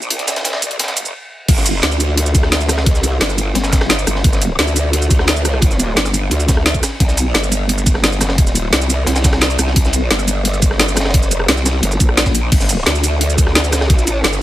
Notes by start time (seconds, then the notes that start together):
0.02 shaker
0.10 C2, closed hi-hat, ride
0.19 snare, closed hi-hat
0.28 snare, closed hi-hat, ride, shaker
0.36 snare, closed hi-hat, ride
0.44 snare, closed hi-hat, ride
0.53 snare, ride
0.62 C2, closed hi-hat, ride, shaker
0.71 closed hi-hat
0.79 G1, snare, closed hi-hat, ride
0.84 snare, ride
0.88 snare, closed hi-hat, ride
0.97 closed hi-hat, shaker
1.05 shaker
1.48 G1, kick, closed hi-hat, ride, crash
1.57 snare, shaker
1.66 closed hi-hat, ride, shaker
1.82 D2, snare, closed hi-hat, ride
1.92 shaker
2.00 closed hi-hat, ride, shaker
2.17 closed hi-hat, ride
2.26 shaker
2.35 kick, closed hi-hat, ride, shaker
2.43 cross-stick, snare
2.52 snare, closed hi-hat, ride
2.61 shaker
2.69 cross-stick, snare, closed hi-hat, ride, shaker
2.78 C#2, cross-stick, snare, ride
2.86 kick, closed hi-hat, ride
2.95 snare, shaker
3.03 C2, closed hi-hat, ride, shaker
3.20 G1, snare, closed hi-hat, ride
3.30 snare, shaker
3.38 closed hi-hat, ride, shaker
3.55 G1, snare, closed hi-hat, ride
3.64 snare, ride, shaker
3.73 kick, snare, closed hi-hat, ride, shaker
3.81 cross-stick, snare, ride
3.89 snare, closed hi-hat, ride
3.98 shaker
4.07 G1, cross-stick, closed hi-hat, ride, shaker
4.16 snare
4.24 G1, kick, closed hi-hat, ride
4.33 snare, shaker
4.41 closed hi-hat, ride, shaker
4.59 D2, snare, closed hi-hat, ride
4.67 shaker
4.76 closed hi-hat, ride, shaker
4.93 closed hi-hat, ride
5.02 shaker
5.11 kick, closed hi-hat, ride, shaker
5.19 cross-stick, snare
5.27 snare, closed hi-hat, ride
5.36 shaker
5.45 cross-stick, closed hi-hat, ride, shaker
5.54 cross-stick
5.62 kick, closed hi-hat, ride
5.71 snare, shaker
5.79 closed hi-hat, ride, shaker
5.96 G1, snare, closed hi-hat, ride
6.05 snare, shaker
6.14 closed hi-hat, ride, shaker
6.31 D2, closed hi-hat, ride
6.40 ride, shaker
6.48 kick, snare, closed hi-hat, ride, shaker
6.57 cross-stick
6.66 snare, closed hi-hat, ride
6.74 kick, shaker
6.83 cross-stick, snare, closed hi-hat, ride, shaker
7.00 C2, kick, closed hi-hat, ride
7.08 snare, shaker
7.17 closed hi-hat, ride, shaker
7.34 G1, snare, closed hi-hat, ride
7.43 shaker
7.52 closed hi-hat, ride, shaker
7.69 closed hi-hat, ride
7.78 shaker
7.86 kick, closed hi-hat, ride, shaker
7.94 cross-stick, snare
8.04 snare, closed hi-hat, ride
8.12 shaker
8.21 cross-stick, snare, closed hi-hat, ride, shaker
8.29 cross-stick, snare, ride
8.34 F1
8.38 kick, closed hi-hat, ride
8.47 snare, shaker
8.55 D#1, closed hi-hat, ride, shaker
8.73 C2, snare, closed hi-hat, ride
8.81 snare, shaker
8.90 closed hi-hat, ride, shaker
9.06 C2, snare, closed hi-hat, ride
9.16 snare, ride, shaker
9.24 kick, snare, closed hi-hat, ride, shaker
9.33 cross-stick, snare, ride
9.41 snare, closed hi-hat, ride
9.50 shaker
9.59 C2, cross-stick, closed hi-hat, ride, shaker
9.67 snare
9.76 C2, kick, closed hi-hat, ride
9.85 snare, shaker
9.93 closed hi-hat, ride, shaker
10.11 G1, snare, closed hi-hat, ride
10.19 shaker
10.27 closed hi-hat, ride, shaker
10.45 closed hi-hat, ride
10.54 shaker
10.62 kick, closed hi-hat, ride, shaker
10.71 cross-stick, snare
10.80 snare, closed hi-hat, ride
10.88 shaker
10.96 cross-stick, snare, closed hi-hat, ride, shaker
11.00 snare, ride
11.05 F#1, cross-stick, snare, ride
11.10 snare, ride
11.14 kick, closed hi-hat, ride
11.23 snare, shaker
11.31 F1, closed hi-hat, ride, shaker
11.40 cross-stick
11.48 C2, snare, closed hi-hat, ride
11.57 snare, shaker
11.66 snare, closed hi-hat, ride, shaker
11.83 G1, closed hi-hat, ride
11.92 ride, shaker
12.00 A#1, kick, closed hi-hat, shaker
12.09 cross-stick
12.17 snare, closed hi-hat, ride
12.26 kick, snare, ride, shaker
12.35 closed hi-hat, shaker
12.52 G1, kick, closed hi-hat, crash, ride
12.60 snare, shaker
12.69 closed hi-hat, ride, shaker
12.86 D2, snare, closed hi-hat, ride
12.95 shaker
13.04 closed hi-hat, ride, shaker
13.21 closed hi-hat, ride
13.30 shaker
13.38 kick, closed hi-hat, ride, shaker
13.47 cross-stick, snare
13.55 snare, closed hi-hat, ride
13.64 shaker
13.72 cross-stick, snare, closed hi-hat, ride, shaker
13.81 cross-stick, snare, ride
13.85 C2
13.90 kick, closed hi-hat, ride
13.98 snare, shaker
14.07 A#1, closed hi-hat, ride, shaker
14.24 G1, snare, closed hi-hat, ride
14.33 snare, shaker